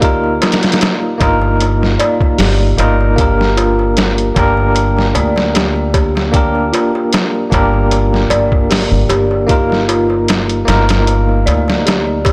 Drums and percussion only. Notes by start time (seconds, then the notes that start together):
0.02 kick, closed hi-hat, darbuka tek
0.24 darbuka tek
0.42 snare, closed hi-hat, darbuka tek
0.52 snare, closed hi-hat
0.63 snare, closed hi-hat, darbuka tek
0.72 snare, closed hi-hat
0.81 snare, closed hi-hat, darbuka tek
1.02 darbuka tek
1.21 kick, closed hi-hat, darbuka tek
1.42 darbuka tek
1.61 closed hi-hat, darbuka tek
1.82 snare, darbuka tek
2.00 closed hi-hat, darbuka tek
2.21 kick, darbuka tek
2.38 snare, open hi-hat, darbuka tek
2.62 darbuka tek
2.78 closed hi-hat, darbuka tek
3.01 darbuka tek
3.18 kick, closed hi-hat, darbuka tek
3.40 snare, darbuka tek
3.57 closed hi-hat, darbuka tek
3.79 darbuka tek
3.97 snare, closed hi-hat, darbuka tek
4.18 closed hi-hat, darbuka tek
4.36 kick, closed hi-hat, darbuka tek
4.57 darbuka tek
4.75 closed hi-hat, darbuka tek
4.97 snare, darbuka tek
5.15 closed hi-hat, darbuka tek
5.36 snare, darbuka tek
5.55 snare, closed hi-hat, darbuka tek
5.76 darbuka tek
5.94 kick, closed hi-hat, darbuka tek
6.15 snare, darbuka tek
6.34 kick, closed hi-hat, darbuka tek
6.55 darbuka tek
6.74 closed hi-hat, darbuka tek
6.95 darbuka tek
7.13 snare, closed hi-hat, darbuka tek
7.35 darbuka tek
7.52 kick, closed hi-hat, darbuka tek
7.74 darbuka tek
7.91 closed hi-hat, darbuka tek
8.13 snare, darbuka tek
8.30 closed hi-hat, darbuka tek
8.52 kick, darbuka tek
8.71 snare, open hi-hat, darbuka tek
8.92 darbuka tek
9.10 closed hi-hat, darbuka tek
9.31 darbuka tek
9.49 kick, closed hi-hat, darbuka tek
9.70 snare, darbuka tek
9.89 closed hi-hat, darbuka tek
10.10 darbuka tek
10.28 snare, closed hi-hat, darbuka tek
10.49 closed hi-hat, darbuka tek
10.68 snare, closed hi-hat, darbuka tek
10.89 snare, closed hi-hat, darbuka tek
11.07 closed hi-hat, darbuka tek
11.29 darbuka tek
11.47 closed hi-hat, darbuka tek
11.68 snare, darbuka tek
11.86 snare, closed hi-hat, darbuka tek
12.07 darbuka tek
12.25 kick, closed hi-hat, darbuka tek